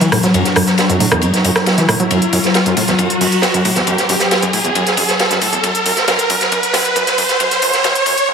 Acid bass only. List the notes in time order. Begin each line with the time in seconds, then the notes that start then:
0.01 E3
0.12 A2
0.23 F#3
0.34 F#2
0.56 F#2
0.89 F#2
1.00 A2
1.12 E2
1.22 F#2
1.44 F#2
1.78 E3
1.89 A2
2.00 F#3
2.11 F#2
2.33 F#2
2.66 F#2
2.77 A2
2.88 E2
2.99 F#2
3.21 F#2
3.54 F#2
3.65 A2
3.76 E2
3.87 F#2
4.09 F#2
4.43 F#2
4.53 A2
4.65 E2
4.75 F#2
4.97 F#2
5.31 F#2
5.42 A2
5.53 E2
5.64 F#2
5.86 F#2
6.08 F#2
6.30 F#2
6.52 F#2
6.74 F#2
6.96 F#2
7.18 F#2
7.40 F#2
7.62 F#2
7.84 F#2
8.06 F#2
8.28 F#2